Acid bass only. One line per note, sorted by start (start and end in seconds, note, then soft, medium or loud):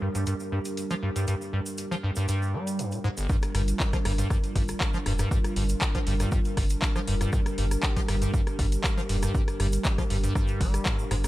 0.02 0.09 G2 medium
0.15 0.25 G2 medium
0.27 0.34 G2 medium
0.52 0.59 G2 medium
0.91 0.95 F3 loud
1.03 1.10 G2 medium
1.16 1.26 G2 medium
1.28 1.35 G2 medium
1.53 1.60 G2 medium
1.91 1.95 F3 loud
2.03 2.11 G2 medium
2.17 2.27 G2 medium
2.29 2.55 G2 medium
2.54 2.81 G3 medium
2.79 2.94 G2 medium
2.92 2.99 A#2 medium
3.04 3.09 G#2 loud
3.18 3.27 G1 medium
3.29 3.37 G2 medium
3.55 3.62 G2 medium
3.93 3.97 F3 loud
4.05 4.12 G2 medium
4.18 4.28 G2 medium
4.56 4.63 G2 medium
4.94 4.98 F3 loud
5.06 5.13 G2 medium
5.19 5.29 G2 medium
5.31 5.39 G2 medium
5.56 5.64 G2 medium
5.95 5.99 F3 loud
6.07 6.14 G2 medium
6.20 6.30 G2 medium
6.57 6.65 G2 medium
6.96 7.00 F3 loud
7.08 7.15 G2 medium
7.21 7.31 G2 medium
7.33 7.40 G2 medium
7.58 7.65 G2 medium
7.97 8.01 F3 loud
8.08 8.16 G2 medium
8.22 8.32 G2 medium
8.34 8.41 G2 medium
8.59 8.66 G2 medium
8.98 9.01 F3 loud
9.09 9.17 G2 medium
9.23 9.32 G2 medium
9.35 9.42 G2 medium
9.60 9.67 G2 medium
9.98 10.02 F3 loud
10.10 10.18 G2 medium
10.24 10.33 G2 medium
10.35 10.62 G2 medium
10.61 10.87 G3 medium
10.86 11.01 G2 medium
10.99 11.06 A#2 medium
11.11 11.15 G#2 loud
11.24 11.28 G1 medium